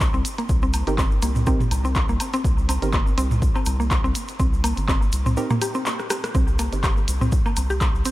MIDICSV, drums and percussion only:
0, 0, Header, 1, 2, 480
1, 0, Start_track
1, 0, Key_signature, -3, "minor"
1, 0, Tempo, 487805
1, 486, Time_signature, 4, 2, 24, 8
1, 7983, End_track
2, 0, Start_track
2, 0, Title_t, "Drums"
2, 5, Note_on_c, 9, 36, 105
2, 5, Note_on_c, 9, 39, 87
2, 7, Note_on_c, 9, 82, 51
2, 104, Note_off_c, 9, 36, 0
2, 104, Note_off_c, 9, 39, 0
2, 106, Note_off_c, 9, 82, 0
2, 133, Note_on_c, 9, 82, 25
2, 232, Note_off_c, 9, 82, 0
2, 245, Note_on_c, 9, 42, 88
2, 252, Note_on_c, 9, 82, 97
2, 344, Note_off_c, 9, 42, 0
2, 350, Note_off_c, 9, 82, 0
2, 378, Note_on_c, 9, 42, 37
2, 381, Note_on_c, 9, 82, 35
2, 476, Note_off_c, 9, 42, 0
2, 480, Note_off_c, 9, 82, 0
2, 484, Note_on_c, 9, 82, 51
2, 485, Note_on_c, 9, 36, 115
2, 582, Note_off_c, 9, 82, 0
2, 584, Note_off_c, 9, 36, 0
2, 613, Note_on_c, 9, 82, 23
2, 711, Note_off_c, 9, 82, 0
2, 725, Note_on_c, 9, 42, 89
2, 725, Note_on_c, 9, 77, 73
2, 725, Note_on_c, 9, 82, 81
2, 823, Note_off_c, 9, 42, 0
2, 823, Note_off_c, 9, 82, 0
2, 824, Note_off_c, 9, 77, 0
2, 858, Note_on_c, 9, 42, 34
2, 866, Note_on_c, 9, 82, 40
2, 956, Note_off_c, 9, 42, 0
2, 964, Note_off_c, 9, 82, 0
2, 965, Note_on_c, 9, 36, 103
2, 965, Note_on_c, 9, 39, 88
2, 972, Note_on_c, 9, 82, 53
2, 1064, Note_off_c, 9, 36, 0
2, 1064, Note_off_c, 9, 39, 0
2, 1070, Note_off_c, 9, 82, 0
2, 1094, Note_on_c, 9, 82, 26
2, 1193, Note_off_c, 9, 82, 0
2, 1204, Note_on_c, 9, 82, 85
2, 1205, Note_on_c, 9, 42, 91
2, 1303, Note_off_c, 9, 42, 0
2, 1303, Note_off_c, 9, 82, 0
2, 1333, Note_on_c, 9, 82, 37
2, 1338, Note_on_c, 9, 45, 75
2, 1432, Note_off_c, 9, 82, 0
2, 1437, Note_off_c, 9, 45, 0
2, 1442, Note_on_c, 9, 82, 51
2, 1445, Note_on_c, 9, 36, 113
2, 1540, Note_off_c, 9, 82, 0
2, 1544, Note_off_c, 9, 36, 0
2, 1578, Note_on_c, 9, 45, 87
2, 1582, Note_on_c, 9, 82, 24
2, 1677, Note_off_c, 9, 45, 0
2, 1681, Note_off_c, 9, 82, 0
2, 1685, Note_on_c, 9, 42, 88
2, 1686, Note_on_c, 9, 77, 55
2, 1690, Note_on_c, 9, 82, 90
2, 1784, Note_off_c, 9, 42, 0
2, 1785, Note_off_c, 9, 77, 0
2, 1789, Note_off_c, 9, 82, 0
2, 1818, Note_on_c, 9, 82, 36
2, 1916, Note_off_c, 9, 82, 0
2, 1920, Note_on_c, 9, 82, 55
2, 1925, Note_on_c, 9, 36, 99
2, 1925, Note_on_c, 9, 39, 88
2, 2019, Note_off_c, 9, 82, 0
2, 2024, Note_off_c, 9, 36, 0
2, 2024, Note_off_c, 9, 39, 0
2, 2053, Note_on_c, 9, 82, 25
2, 2152, Note_off_c, 9, 82, 0
2, 2166, Note_on_c, 9, 42, 85
2, 2166, Note_on_c, 9, 77, 74
2, 2171, Note_on_c, 9, 82, 86
2, 2264, Note_off_c, 9, 42, 0
2, 2264, Note_off_c, 9, 77, 0
2, 2269, Note_off_c, 9, 82, 0
2, 2297, Note_on_c, 9, 82, 39
2, 2298, Note_on_c, 9, 42, 36
2, 2396, Note_off_c, 9, 82, 0
2, 2397, Note_off_c, 9, 42, 0
2, 2406, Note_on_c, 9, 36, 112
2, 2410, Note_on_c, 9, 82, 52
2, 2504, Note_off_c, 9, 36, 0
2, 2509, Note_off_c, 9, 82, 0
2, 2538, Note_on_c, 9, 82, 23
2, 2637, Note_off_c, 9, 82, 0
2, 2646, Note_on_c, 9, 42, 85
2, 2646, Note_on_c, 9, 77, 75
2, 2654, Note_on_c, 9, 82, 94
2, 2744, Note_off_c, 9, 42, 0
2, 2744, Note_off_c, 9, 77, 0
2, 2752, Note_off_c, 9, 82, 0
2, 2778, Note_on_c, 9, 42, 35
2, 2783, Note_on_c, 9, 82, 38
2, 2877, Note_off_c, 9, 42, 0
2, 2880, Note_off_c, 9, 82, 0
2, 2880, Note_on_c, 9, 82, 43
2, 2886, Note_on_c, 9, 36, 101
2, 2886, Note_on_c, 9, 39, 90
2, 2978, Note_off_c, 9, 82, 0
2, 2984, Note_off_c, 9, 36, 0
2, 2984, Note_off_c, 9, 39, 0
2, 3018, Note_on_c, 9, 82, 25
2, 3116, Note_off_c, 9, 82, 0
2, 3126, Note_on_c, 9, 42, 86
2, 3133, Note_on_c, 9, 82, 88
2, 3224, Note_off_c, 9, 42, 0
2, 3231, Note_off_c, 9, 82, 0
2, 3258, Note_on_c, 9, 45, 77
2, 3259, Note_on_c, 9, 82, 35
2, 3357, Note_off_c, 9, 45, 0
2, 3358, Note_off_c, 9, 82, 0
2, 3366, Note_on_c, 9, 36, 108
2, 3369, Note_on_c, 9, 82, 47
2, 3464, Note_off_c, 9, 36, 0
2, 3468, Note_off_c, 9, 82, 0
2, 3496, Note_on_c, 9, 82, 23
2, 3498, Note_on_c, 9, 77, 67
2, 3594, Note_off_c, 9, 82, 0
2, 3597, Note_off_c, 9, 77, 0
2, 3598, Note_on_c, 9, 82, 92
2, 3605, Note_on_c, 9, 42, 89
2, 3606, Note_on_c, 9, 77, 54
2, 3696, Note_off_c, 9, 82, 0
2, 3704, Note_off_c, 9, 42, 0
2, 3704, Note_off_c, 9, 77, 0
2, 3742, Note_on_c, 9, 82, 34
2, 3840, Note_off_c, 9, 82, 0
2, 3845, Note_on_c, 9, 39, 91
2, 3845, Note_on_c, 9, 82, 53
2, 3846, Note_on_c, 9, 36, 101
2, 3944, Note_off_c, 9, 36, 0
2, 3944, Note_off_c, 9, 39, 0
2, 3944, Note_off_c, 9, 82, 0
2, 3981, Note_on_c, 9, 82, 24
2, 4079, Note_off_c, 9, 82, 0
2, 4085, Note_on_c, 9, 42, 84
2, 4086, Note_on_c, 9, 82, 92
2, 4184, Note_off_c, 9, 42, 0
2, 4184, Note_off_c, 9, 82, 0
2, 4211, Note_on_c, 9, 82, 39
2, 4218, Note_on_c, 9, 42, 35
2, 4310, Note_off_c, 9, 82, 0
2, 4316, Note_off_c, 9, 42, 0
2, 4325, Note_on_c, 9, 36, 112
2, 4326, Note_on_c, 9, 82, 52
2, 4424, Note_off_c, 9, 36, 0
2, 4424, Note_off_c, 9, 82, 0
2, 4460, Note_on_c, 9, 82, 25
2, 4559, Note_off_c, 9, 82, 0
2, 4565, Note_on_c, 9, 42, 88
2, 4566, Note_on_c, 9, 77, 76
2, 4573, Note_on_c, 9, 82, 84
2, 4664, Note_off_c, 9, 42, 0
2, 4664, Note_off_c, 9, 77, 0
2, 4672, Note_off_c, 9, 82, 0
2, 4695, Note_on_c, 9, 82, 36
2, 4698, Note_on_c, 9, 42, 35
2, 4794, Note_off_c, 9, 82, 0
2, 4796, Note_off_c, 9, 42, 0
2, 4805, Note_on_c, 9, 36, 100
2, 4805, Note_on_c, 9, 39, 94
2, 4812, Note_on_c, 9, 82, 48
2, 4904, Note_off_c, 9, 36, 0
2, 4904, Note_off_c, 9, 39, 0
2, 4911, Note_off_c, 9, 82, 0
2, 4941, Note_on_c, 9, 82, 26
2, 5039, Note_off_c, 9, 82, 0
2, 5041, Note_on_c, 9, 82, 86
2, 5046, Note_on_c, 9, 42, 90
2, 5139, Note_off_c, 9, 82, 0
2, 5144, Note_off_c, 9, 42, 0
2, 5177, Note_on_c, 9, 82, 35
2, 5178, Note_on_c, 9, 45, 81
2, 5276, Note_off_c, 9, 45, 0
2, 5276, Note_off_c, 9, 82, 0
2, 5284, Note_on_c, 9, 82, 46
2, 5382, Note_off_c, 9, 82, 0
2, 5413, Note_on_c, 9, 82, 27
2, 5417, Note_on_c, 9, 45, 91
2, 5511, Note_off_c, 9, 82, 0
2, 5516, Note_off_c, 9, 45, 0
2, 5525, Note_on_c, 9, 77, 54
2, 5526, Note_on_c, 9, 42, 87
2, 5527, Note_on_c, 9, 82, 81
2, 5624, Note_off_c, 9, 42, 0
2, 5624, Note_off_c, 9, 77, 0
2, 5626, Note_off_c, 9, 82, 0
2, 5649, Note_on_c, 9, 82, 42
2, 5748, Note_off_c, 9, 82, 0
2, 5764, Note_on_c, 9, 82, 49
2, 5766, Note_on_c, 9, 39, 94
2, 5862, Note_off_c, 9, 82, 0
2, 5864, Note_off_c, 9, 39, 0
2, 5894, Note_on_c, 9, 82, 26
2, 5898, Note_on_c, 9, 37, 52
2, 5992, Note_off_c, 9, 82, 0
2, 5997, Note_off_c, 9, 37, 0
2, 6005, Note_on_c, 9, 77, 77
2, 6005, Note_on_c, 9, 82, 81
2, 6006, Note_on_c, 9, 37, 77
2, 6006, Note_on_c, 9, 42, 85
2, 6104, Note_off_c, 9, 37, 0
2, 6104, Note_off_c, 9, 42, 0
2, 6104, Note_off_c, 9, 77, 0
2, 6104, Note_off_c, 9, 82, 0
2, 6139, Note_on_c, 9, 37, 78
2, 6139, Note_on_c, 9, 42, 35
2, 6144, Note_on_c, 9, 82, 33
2, 6237, Note_off_c, 9, 37, 0
2, 6237, Note_off_c, 9, 42, 0
2, 6242, Note_off_c, 9, 82, 0
2, 6244, Note_on_c, 9, 82, 54
2, 6246, Note_on_c, 9, 36, 118
2, 6343, Note_off_c, 9, 82, 0
2, 6344, Note_off_c, 9, 36, 0
2, 6372, Note_on_c, 9, 82, 28
2, 6470, Note_off_c, 9, 82, 0
2, 6482, Note_on_c, 9, 82, 94
2, 6485, Note_on_c, 9, 77, 77
2, 6486, Note_on_c, 9, 42, 91
2, 6581, Note_off_c, 9, 82, 0
2, 6584, Note_off_c, 9, 42, 0
2, 6584, Note_off_c, 9, 77, 0
2, 6618, Note_on_c, 9, 42, 36
2, 6619, Note_on_c, 9, 82, 39
2, 6717, Note_off_c, 9, 42, 0
2, 6717, Note_off_c, 9, 82, 0
2, 6726, Note_on_c, 9, 36, 104
2, 6726, Note_on_c, 9, 39, 95
2, 6726, Note_on_c, 9, 82, 51
2, 6824, Note_off_c, 9, 36, 0
2, 6824, Note_off_c, 9, 39, 0
2, 6825, Note_off_c, 9, 82, 0
2, 6857, Note_on_c, 9, 82, 23
2, 6956, Note_off_c, 9, 82, 0
2, 6966, Note_on_c, 9, 42, 94
2, 6970, Note_on_c, 9, 82, 95
2, 7064, Note_off_c, 9, 42, 0
2, 7069, Note_off_c, 9, 82, 0
2, 7098, Note_on_c, 9, 45, 82
2, 7098, Note_on_c, 9, 82, 37
2, 7196, Note_off_c, 9, 45, 0
2, 7196, Note_off_c, 9, 82, 0
2, 7204, Note_on_c, 9, 82, 56
2, 7206, Note_on_c, 9, 36, 117
2, 7303, Note_off_c, 9, 82, 0
2, 7304, Note_off_c, 9, 36, 0
2, 7337, Note_on_c, 9, 82, 25
2, 7338, Note_on_c, 9, 77, 68
2, 7435, Note_off_c, 9, 82, 0
2, 7436, Note_off_c, 9, 77, 0
2, 7444, Note_on_c, 9, 82, 93
2, 7446, Note_on_c, 9, 42, 95
2, 7446, Note_on_c, 9, 77, 55
2, 7542, Note_off_c, 9, 82, 0
2, 7544, Note_off_c, 9, 42, 0
2, 7544, Note_off_c, 9, 77, 0
2, 7576, Note_on_c, 9, 82, 40
2, 7674, Note_off_c, 9, 82, 0
2, 7683, Note_on_c, 9, 82, 55
2, 7686, Note_on_c, 9, 36, 107
2, 7686, Note_on_c, 9, 39, 98
2, 7781, Note_off_c, 9, 82, 0
2, 7784, Note_off_c, 9, 36, 0
2, 7784, Note_off_c, 9, 39, 0
2, 7823, Note_on_c, 9, 82, 26
2, 7921, Note_off_c, 9, 82, 0
2, 7921, Note_on_c, 9, 82, 83
2, 7926, Note_on_c, 9, 42, 88
2, 7983, Note_off_c, 9, 42, 0
2, 7983, Note_off_c, 9, 82, 0
2, 7983, End_track
0, 0, End_of_file